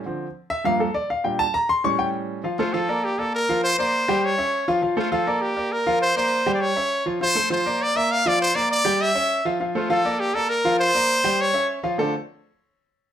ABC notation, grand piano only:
X:1
M:4/4
L:1/8
Q:1/4=201
K:Dm
V:1 name="Grand piano"
z3 e f A d f | g a b c' ^c' g z2 | [F,Ff] [A,Ac] [F,Ff] [B,Bd]2 [B,Bd]2 [F,Ff]- | [F,Ff] [B,Bd]2 [G,Gg]2 [^C^ce]2 [F,Ff] |
[F,Ff] [A,Ac] [F,Ff] [B,Bd]2 [B,Bd]2 [F,Ff]- | [F,Ff] [B,Bd]2 [G,Gg]2 [^C^ce]2 [F,Ff] | [F,Ff] [A,Ac] [F,Ff] [B,Bd]2 [B,Bd]2 [F,Ff]- | [F,Ff] [B,Bd]2 [G,Gg]2 [^C^ce]2 [F,Ff] |
[F,Ff] [A,Ac] [F,Ff] [B,Bd]2 [B,Bd]2 [F,Ff]- | [F,Ff] [B,Bd]2 [G,Gg]2 [^C^ce]2 [F,Ff] | [D,A,CDFA] z6 z |]
V:2 name="Grand piano" clef=bass
[D,F,C] z3 [G,,F,B,] z3 | [B,,G,D] z3 [A,,G,^C]4 | z8 | z8 |
z8 | z8 | z8 | z8 |
z8 | z8 | z8 |]